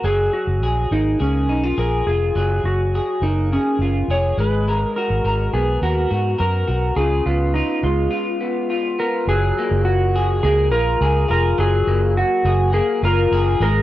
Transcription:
0.00 0.27 F#1 medium
0.00 0.66 F#4 soft
0.04 2.36 F#3 medium
0.04 0.33 G#4 medium
0.04 0.63 G#4 soft
0.33 0.87 F#4 medium
0.47 0.62 F#1 medium
0.62 0.85 A#1 medium
0.62 1.20 G#4 medium
0.91 1.14 G#1 medium
0.91 3.22 A#3 medium
0.91 1.21 D#4 medium
1.20 1.49 C#2 medium
1.20 1.75 C#4 medium
1.20 1.77 G#4 medium
1.49 1.72 B1 medium
1.49 1.64 D#4 medium
1.64 2.07 F4 soft
1.78 2.01 A#1 medium
1.78 2.37 G#4 medium
1.78 2.08 A#4 medium
2.07 2.30 F1 medium
2.07 2.65 F4 medium
2.07 2.65 G#4 medium
2.36 2.59 F#1 loud
2.36 4.38 F#3 medium
2.36 2.95 G#4 medium
2.64 2.99 F#1 medium
2.64 3.24 F#4 medium
2.95 3.53 G#4 medium
3.22 3.56 F#1 loud
3.22 4.71 A#3 medium
3.22 3.52 D#4 medium
3.52 4.05 C#4 medium
3.52 4.10 G#4 medium
3.79 4.02 F#1 medium
3.79 4.44 F4 medium
4.08 4.31 F1 medium
4.08 4.68 G#4 medium
4.08 4.39 C#5 medium
4.37 4.83 G#1 loud
4.37 4.68 G#3 medium
4.37 4.82 B4 medium
4.68 7.83 G#3 medium
4.68 5.24 A#4 medium
4.82 4.96 A#4 medium
4.96 6.09 F#4 medium
4.96 5.49 A#4 medium
5.10 5.21 G#1 medium
5.24 5.47 G#1 medium
5.24 5.82 A#4 medium
5.53 5.76 B1 medium
5.53 7.26 B3 medium
5.53 5.80 G#4 medium
5.82 6.05 D#2 medium
5.82 6.40 F#4 medium
5.82 6.37 A#4 medium
6.11 6.34 G#2 medium
6.11 6.66 F#4 medium
6.38 6.63 F#2 medium
6.38 7.02 A#4 medium
6.38 6.96 A#4 medium
6.67 6.91 B1 medium
6.67 6.97 F#4 medium
6.96 7.20 C#2 loud
6.96 9.27 C#3 medium
6.96 7.55 F4 medium
6.96 7.23 G#4 medium
7.26 7.60 C#2 medium
7.26 8.39 B3 medium
7.26 7.53 F4 medium
7.54 7.84 D#4 medium
7.54 8.10 F4 medium
7.83 8.06 C#2 medium
7.83 9.29 G#3 medium
7.83 8.95 F4 medium
8.11 8.70 F4 medium
8.41 8.98 B3 medium
8.70 10.71 F4 medium
8.99 9.33 B3 medium
8.99 9.26 A#4 medium
9.27 9.51 F#1 loud
9.27 11.58 F#3 medium
9.27 9.82 G#4 loud
9.59 10.44 A#3 medium
9.71 10.40 F#1 medium
9.85 10.39 F#4 medium
10.16 11.01 G#4 medium
10.43 10.72 C#2 loud
10.43 11.87 A#3 medium
10.43 10.70 G#4 loud
10.72 10.95 A#1 medium
10.72 11.27 F4 medium
10.72 11.25 A#4 loud
11.01 11.24 C#2 medium
11.01 12.45 G#4 medium
11.28 11.53 F1 medium
11.28 12.15 F4 medium
11.28 11.57 A#4 loud
11.58 11.81 F#1 loud
11.58 13.61 F#3 medium
11.58 12.13 G#4 loud
11.87 12.22 F#1 loud
11.87 12.72 A#3 medium
12.17 12.73 F#4 loud
12.45 12.79 F#1 loud
12.45 13.32 G#4 medium
12.73 13.82 A#3 medium
12.73 13.03 G#4 loud
13.03 13.26 F#1 loud
13.03 13.66 F4 medium
13.03 13.57 A#4 loud
13.31 13.54 F#1 loud
13.31 13.82 G#4 medium
13.60 13.82 G#1 loud
13.60 13.82 G#3 medium
13.60 13.82 A#4 loud

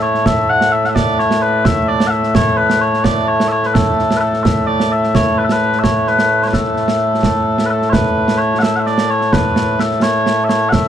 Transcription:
0.00 10.88 A2 medium
0.00 10.88 A3 medium
0.00 0.26 C#5 medium
0.14 snare soft
0.26 0.50 E5 loud
0.26 concert bass drum medium
0.26 snare medium
0.50 0.72 F#5 loud
0.61 snare medium
0.72 0.85 E5 loud
0.84 0.89 F#5 medium
0.84 snare soft
0.89 0.95 E5 medium
0.95 1.19 D5 loud
0.95 concert bass drum medium
0.95 snare medium
1.19 1.42 C#5 medium
1.19 snare soft
1.31 snare medium
1.42 1.65 B4 medium
1.65 1.88 E5 loud
1.65 concert bass drum medium
1.65 snare loud
1.88 2.07 D5 medium
2.00 snare medium
2.07 2.35 E5 loud
2.07 2.10 F#5 loud
2.23 snare soft
2.35 2.57 C#5 loud
2.35 concert bass drum medium
2.35 snare loud
2.57 2.81 B4 medium
2.70 snare medium
2.81 3.04 C#5 medium
2.94 snare soft
3.04 3.28 D5 medium
3.04 concert bass drum medium
3.04 snare loud
3.28 3.48 C#5 medium
3.40 snare medium
3.48 3.66 C#5 loud
3.48 3.52 E5 loud
3.63 3.74 B4 medium
3.63 snare soft
3.74 4.17 A4 medium
3.74 concert bass drum medium
3.74 snare loud
3.99 snare soft
4.11 snare medium
4.17 4.43 A4 medium
4.17 4.20 B4 medium
4.34 snare soft
4.43 4.67 E5 medium
4.43 concert bass drum medium
4.43 snare loud
4.67 4.92 D5 loud
4.80 snare medium
4.92 5.15 E5 medium
5.03 snare soft
5.15 5.38 C#5 loud
5.15 concert bass drum medium
5.15 snare loud
5.38 5.44 B4 medium
5.44 5.52 A4 medium
5.49 5.79 B4 medium
5.49 snare medium
5.72 snare soft
5.79 5.83 E5 medium
5.83 6.08 C#5 medium
5.83 concert bass drum soft
5.83 snare medium
6.07 6.43 B4 medium
6.07 snare soft
6.19 snare medium
6.42 6.47 C#5 soft
6.42 snare soft
6.47 6.53 B4 soft
6.53 7.66 A4 medium
6.53 concert bass drum soft
6.53 snare medium
6.76 snare soft
6.88 snare medium
7.23 concert bass drum soft
7.23 snare medium
7.58 snare medium
7.66 7.70 B4 medium
7.70 7.89 A4 medium
7.82 snare soft
7.89 8.38 B4 medium
7.89 7.93 C#5 medium
7.89 concert bass drum medium
7.89 snare medium
8.28 snare medium
8.38 8.59 C#5 medium
8.59 8.76 E5 medium
8.59 8.62 F#5 medium
8.63 snare medium
8.76 8.87 E5 medium
8.76 8.80 F#5 medium
8.86 9.10 D5 loud
8.86 snare soft
8.98 snare medium
9.10 9.33 C#5 medium
9.21 snare soft
9.33 9.80 B4 medium
9.33 concert bass drum medium
9.33 snare medium
9.56 snare medium
9.79 10.02 A4 medium
9.79 snare medium
9.91 snare soft
10.02 10.44 C#5 medium
10.02 snare loud
10.26 snare medium
10.44 10.49 E5 medium
10.49 10.69 C#5 medium
10.49 snare medium
10.69 10.88 E5 medium
10.69 10.72 F#5 medium
10.69 concert bass drum medium
10.69 snare medium

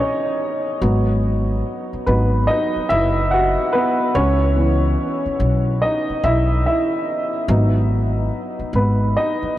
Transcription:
0.00 0.83 C#4 medium
0.00 0.83 D#4 medium
0.00 0.83 C#5 loud
0.00 0.83 D#5 loud
0.81 1.61 G#1 medium
0.81 2.06 F#3 medium
0.81 2.06 B3 medium
1.93 muted upright bass stroke medium
2.06 2.46 G#1 medium
2.06 2.44 F#3 soft
2.06 2.46 B3 medium
2.06 2.45 D#4 medium
2.06 2.49 B4 medium
2.47 2.87 D#4 medium
2.47 2.90 D#5 loud
2.76 muted upright bass stroke soft
2.89 3.55 F#1 medium
2.89 3.29 E4 medium
2.89 3.32 E5 loud
3.31 3.71 F#4 medium
3.31 3.70 F#5 loud
3.73 4.13 B3 medium
3.73 4.16 B4 loud
4.15 4.94 C#2 loud
4.15 5.78 C#4 medium
4.15 5.86 C#5 loud
4.56 7.44 E3 medium
4.56 7.44 B3 medium
5.26 muted upright bass stroke soft
5.40 5.79 B1 medium
5.82 6.21 D#4 medium
5.82 6.24 D#5 loud
6.10 muted upright bass stroke soft
6.24 6.63 B1 medium
6.24 6.63 E4 medium
6.24 6.65 E5 medium
6.66 7.31 E4 medium
6.66 7.30 E5 medium
7.48 8.27 G#1 loud
7.48 9.58 F#3 medium
7.48 8.74 B3 medium
7.48 9.16 D#4 medium
8.59 muted upright bass stroke medium
8.73 9.12 G#1 medium
8.73 9.13 B3 medium
8.73 9.17 B4 medium
9.17 9.58 D#4 medium
9.17 9.58 D#5 loud
9.42 muted upright bass stroke medium

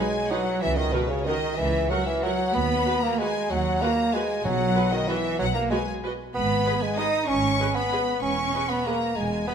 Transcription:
0.00 0.30 G#3 medium
0.00 0.32 G#3 medium
0.00 0.30 G#5 medium
0.30 0.63 F#3 medium
0.30 0.62 F#3 medium
0.30 0.39 D#4 medium
0.30 0.39 B4 medium
0.30 0.38 F#5 soft
0.30 0.62 F#5 medium
0.62 0.88 C#2 medium
0.62 0.79 E3 medium
0.62 0.77 E3 medium
0.62 0.77 E5 medium
0.77 0.93 D#3 medium
0.77 0.94 D#3 medium
0.77 0.93 D#5 medium
0.93 1.11 B2 medium
0.93 1.10 B2 medium
0.93 1.01 F#4 medium
0.93 1.01 A#4 medium
0.93 1.10 B4 medium
0.93 1.01 F#5 medium
1.09 1.27 C#3 medium
1.09 1.26 C#5 medium
1.26 1.56 D#3 medium
1.26 1.58 D#3 medium
1.26 1.35 F#4 medium
1.26 1.35 A#4 medium
1.26 1.57 D#5 medium
1.26 1.34 F#5 medium
1.57 1.85 C#2 medium
1.57 1.91 E3 medium
1.57 1.89 E3 medium
1.57 1.90 E5 medium
1.89 2.06 F#3 medium
1.89 1.97 F#3 medium
1.89 1.99 F#4 medium
1.89 1.99 A#4 medium
1.89 1.98 F#5 medium
1.89 2.06 F#5 medium
2.06 2.25 E3 medium
2.06 2.23 E3 medium
2.06 2.23 E5 medium
2.23 2.54 F#3 medium
2.23 2.32 F#4 medium
2.23 2.31 A#4 medium
2.23 2.54 F#5 medium
2.23 2.32 F#5 medium
2.54 2.81 D#2 medium
2.54 3.04 B3 medium
2.54 3.03 B3 medium
2.54 3.03 B5 medium
2.86 2.94 F#4 medium
2.86 2.94 B4 medium
2.86 2.94 F#5 medium
3.02 3.20 A#3 medium
3.02 3.19 A#3 medium
3.02 3.19 A#5 medium
3.19 3.52 G#3 loud
3.19 3.50 G#3 medium
3.19 3.27 F#4 medium
3.19 3.27 B4 medium
3.19 3.27 F#5 medium
3.19 3.50 G#5 medium
3.50 3.76 D#2 medium
3.50 3.83 F#3 medium
3.50 3.81 F#3 medium
3.50 3.81 F#5 medium
3.81 4.16 A#3 loud
3.81 4.13 A#3 medium
3.81 3.90 F#4 medium
3.81 3.90 B4 medium
3.81 3.90 F#5 medium
3.81 4.14 A#5 medium
4.13 4.45 G#3 medium
4.13 4.44 G#3 medium
4.13 4.22 F#4 medium
4.13 4.22 B4 medium
4.13 4.22 F#5 soft
4.13 4.44 G#5 medium
4.44 4.70 B1 medium
4.44 4.89 B2 medium
4.44 4.92 F#3 medium
4.44 4.94 F#3 medium
4.44 4.92 F#5 medium
4.76 4.84 F#4 medium
4.76 4.84 B4 medium
4.76 4.84 D#5 medium
4.92 5.09 D#3 medium
4.92 5.09 D#5 medium
5.08 5.39 E3 medium
5.08 5.17 F#4 medium
5.08 5.17 B4 medium
5.08 5.16 D#5 medium
5.08 5.40 E5 medium
5.39 5.66 B1 medium
5.39 5.46 F#3 medium
5.39 5.55 F#5 medium
5.54 5.70 A#3 medium
5.54 5.71 A#3 medium
5.54 5.61 A#5 medium
5.70 5.78 G#3 medium
5.70 5.88 G#3 medium
5.70 5.79 F#4 medium
5.70 5.79 B4 medium
5.70 5.79 D#5 medium
5.70 5.87 G#5 medium
6.04 6.12 F#4 medium
6.04 6.12 B4 medium
6.04 6.12 D#5 medium
6.35 6.60 G#1 medium
6.35 6.84 B3 medium
6.35 6.79 B3 medium
6.35 6.79 B5 medium
6.66 6.74 G#4 medium
6.66 6.74 B4 medium
6.66 6.74 D#5 medium
6.82 6.98 G#3 medium
6.82 7.00 G#3 medium
6.82 6.98 G#5 medium
6.97 7.29 D#4 medium
6.97 7.30 D#4 medium
6.97 7.07 G#4 medium
6.97 7.07 B4 medium
6.97 7.06 D#5 medium
6.97 7.28 D#6 medium
7.28 7.54 G#1 medium
7.28 7.77 C#4 medium
7.28 7.76 C#4 medium
7.28 7.74 C#6 medium
7.59 7.68 G#4 medium
7.59 7.68 B4 medium
7.59 7.67 D#5 medium
7.75 8.21 B3 medium
7.75 8.22 B3 medium
7.75 8.21 B5 medium
7.92 8.00 G#4 soft
7.92 8.00 B4 medium
7.92 8.00 D#5 soft
8.22 8.48 E1 medium
8.22 8.71 C#4 medium
8.22 8.69 C#4 medium
8.22 8.69 C#6 medium
8.53 8.62 G#4 medium
8.53 8.62 B4 medium
8.53 8.61 D#5 soft
8.70 8.87 B3 medium
8.70 8.86 B3 medium
8.70 8.86 B5 medium
8.86 9.18 A#3 medium
8.86 9.17 A#3 medium
8.86 8.95 G#4 soft
8.86 8.95 B4 soft
8.86 8.94 D#5 soft
8.86 9.17 A#5 medium
9.16 9.43 E1 medium
9.16 9.47 G#3 medium
9.16 9.48 G#5 medium
9.48 9.54 B3 medium
9.48 9.54 G#4 soft
9.48 9.54 B4 medium
9.48 9.54 D#5 soft
9.48 9.54 B5 medium

